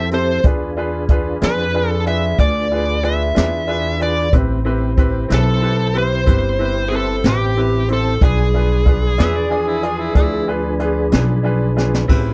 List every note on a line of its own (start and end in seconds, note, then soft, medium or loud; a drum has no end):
0.00 0.41 F2 medium
0.00 0.42 C4 medium
0.00 0.41 E4 medium
0.00 0.41 G4 medium
0.00 0.41 A4 medium
0.11 0.36 C4 soft
0.11 0.37 E4 soft
0.11 0.37 G4 soft
0.11 0.37 A4 medium
0.11 0.43 C5 medium
0.11 closed hi-hat medium
0.44 1.38 E2 medium
0.44 0.69 D4 medium
0.44 4.29 D4 medium
0.44 4.29 F4 medium
0.44 0.69 F4 soft
0.44 4.29 G#4 medium
0.44 0.70 G#4 medium
0.44 4.29 B4 medium
0.44 0.70 B4 medium
0.44 kick medium
0.44 closed hi-hat medium
0.77 1.01 D4 medium
0.77 1.02 F4 medium
0.77 1.02 G#4 medium
0.77 1.02 B4 medium
1.08 1.34 D4 medium
1.08 1.34 F4 medium
1.08 1.34 G#4 medium
1.08 1.35 B4 medium
1.08 kick medium
1.08 closed hi-hat medium
1.41 2.36 F2 medium
1.41 1.66 D4 medium
1.41 1.66 F4 soft
1.41 1.67 G#4 soft
1.41 1.89 B4 medium
1.41 1.67 D5 medium
1.41 snare medium
1.41 closed hi-hat medium
1.74 1.98 D4 soft
1.74 1.99 F4 soft
1.74 1.99 G#4 medium
1.74 1.99 B4 medium
1.89 2.04 A4 medium
2.06 2.31 D4 soft
2.06 2.31 F4 soft
2.06 2.31 G#4 soft
2.06 2.31 B4 medium
2.06 2.37 E5 medium
2.06 closed hi-hat medium
2.39 3.33 D2 medium
2.39 2.63 D4 soft
2.39 2.63 F4 soft
2.39 2.64 G#4 soft
2.39 3.04 D5 medium
2.39 2.64 D5 medium
2.39 kick medium
2.39 closed hi-hat medium
2.71 2.96 D4 soft
2.71 2.96 F4 soft
2.71 2.96 G#4 soft
2.71 2.97 B4 medium
3.03 3.28 D4 medium
3.03 3.28 F4 soft
3.03 3.28 G#4 soft
3.03 3.28 B4 medium
3.03 4.02 E5 medium
3.03 closed hi-hat medium
3.35 4.31 E2 medium
3.35 3.60 D4 soft
3.35 3.60 F4 medium
3.35 3.60 G#4 soft
3.35 3.61 B4 medium
3.35 snare loud
3.35 closed hi-hat medium
3.67 3.92 D4 medium
3.67 3.92 F4 soft
3.67 3.93 G#4 soft
3.67 3.93 B4 medium
3.99 4.24 D4 soft
3.99 4.25 F4 soft
3.99 4.25 G#4 soft
3.99 4.25 B4 medium
3.99 4.32 D5 medium
3.99 closed hi-hat medium
4.32 5.27 A1 medium
4.32 4.57 C4 medium
4.32 8.18 C4 medium
4.32 4.57 E4 medium
4.32 8.18 E4 medium
4.32 8.18 G4 medium
4.32 4.58 G4 medium
4.32 4.58 B4 medium
4.32 8.18 C5 medium
4.32 kick loud
4.32 closed hi-hat medium
4.65 4.89 C4 medium
4.65 4.90 E4 medium
4.65 4.90 G4 medium
4.65 4.90 B4 medium
4.97 5.22 C4 medium
4.97 5.22 E4 medium
4.97 5.22 G4 medium
4.97 5.23 B4 medium
4.97 kick medium
4.97 closed hi-hat medium
5.28 6.24 B1 medium
5.28 5.54 C4 medium
5.28 5.54 E4 soft
5.28 5.55 G4 soft
5.28 5.55 B4 medium
5.28 snare medium
5.28 closed hi-hat medium
5.34 5.98 A4 medium
5.61 5.86 C4 medium
5.61 5.86 E4 soft
5.61 5.87 G4 soft
5.61 5.87 B4 medium
5.93 6.18 C4 soft
5.93 6.19 E4 soft
5.93 6.19 G4 soft
5.93 6.19 B4 medium
5.93 closed hi-hat medium
5.98 6.89 C5 medium
6.26 7.21 G1 medium
6.26 6.51 C4 medium
6.26 6.51 E4 soft
6.26 6.51 G4 soft
6.26 6.52 B4 medium
6.26 kick medium
6.26 closed hi-hat medium
6.59 6.83 C4 soft
6.59 6.84 E4 soft
6.59 6.84 G4 soft
6.59 6.84 B4 medium
6.88 7.16 C4 medium
6.88 7.16 E4 soft
6.88 7.16 G4 soft
6.88 6.94 G#4 medium
6.88 closed hi-hat medium
6.93 7.27 A4 medium
6.93 7.17 B4 medium
7.24 8.18 A1 medium
7.24 7.48 C4 medium
7.24 7.49 E4 soft
7.24 7.49 G4 soft
7.24 7.49 B4 medium
7.24 snare loud
7.24 closed hi-hat medium
7.28 7.87 G4 medium
7.56 7.81 C4 medium
7.56 7.81 E4 soft
7.56 7.81 G4 soft
7.56 7.82 B4 medium
7.88 8.13 C4 soft
7.88 8.13 E4 soft
7.88 8.14 G4 soft
7.88 8.14 C5 medium
7.88 closed hi-hat medium
7.93 8.23 A4 medium
8.21 9.16 B1 medium
8.21 12.06 F3 medium
8.21 8.46 D4 medium
8.21 12.06 D4 medium
8.21 8.46 F4 medium
8.21 8.46 G#4 medium
8.21 12.06 G#4 medium
8.21 11.42 G#4 medium
8.21 12.06 B4 medium
8.21 8.47 B4 medium
8.21 kick medium
8.21 closed hi-hat medium
8.54 8.78 D4 soft
8.54 8.78 F4 soft
8.54 8.79 G#4 soft
8.54 8.79 B4 medium
8.85 9.10 D4 soft
8.85 9.10 F4 soft
8.85 9.11 G#4 soft
8.85 9.11 B4 medium
8.85 kick medium
8.85 closed hi-hat medium
9.18 10.13 E2 medium
9.18 9.42 D4 medium
9.18 9.43 F4 medium
9.18 9.43 G#4 medium
9.18 9.43 B4 medium
9.18 9.38 E5 medium
9.18 snare loud
9.18 closed hi-hat medium
9.36 9.53 D5 medium
9.50 9.75 D4 medium
9.50 9.75 F4 medium
9.50 9.69 G#4 medium
9.50 9.75 G#4 medium
9.50 9.75 D5 medium
9.68 9.86 E4 medium
9.82 10.07 D4 medium
9.82 10.07 F4 medium
9.82 10.08 G#4 medium
9.82 10.01 G#4 medium
9.82 10.08 D5 medium
9.82 closed hi-hat medium
10.00 10.15 E4 medium
10.15 11.09 D2 medium
10.15 10.39 D4 medium
10.15 10.47 E4 medium
10.15 10.40 F4 medium
10.15 10.40 G#4 medium
10.15 10.40 D5 medium
10.15 kick medium
10.15 closed hi-hat medium
10.47 10.71 D4 medium
10.47 10.72 F4 medium
10.47 10.72 G#4 medium
10.47 10.72 B4 medium
10.79 11.04 D4 medium
10.79 11.04 F4 medium
10.79 11.04 G#4 soft
10.79 11.05 B4 medium
10.79 closed hi-hat medium
11.12 12.06 B1 medium
11.12 11.36 D4 medium
11.12 11.36 F4 medium
11.12 11.37 G#4 soft
11.12 11.37 B4 medium
11.12 snare loud
11.12 closed hi-hat medium
11.43 11.68 D4 medium
11.43 11.69 F4 medium
11.43 11.69 G#4 medium
11.43 11.69 B4 medium
11.76 12.01 D4 medium
11.76 12.01 F4 medium
11.76 12.02 G#4 medium
11.76 12.02 B4 medium
11.76 snare medium
11.94 snare medium
12.08 12.34 A1 medium
12.08 12.33 C4 medium
12.08 12.34 C#4 medium
12.08 12.33 E4 medium
12.08 12.34 F4 medium
12.08 12.33 G4 medium
12.08 12.34 G#4 medium
12.08 12.34 B4 medium
12.08 12.34 C5 medium
12.08 kick medium
12.08 crash medium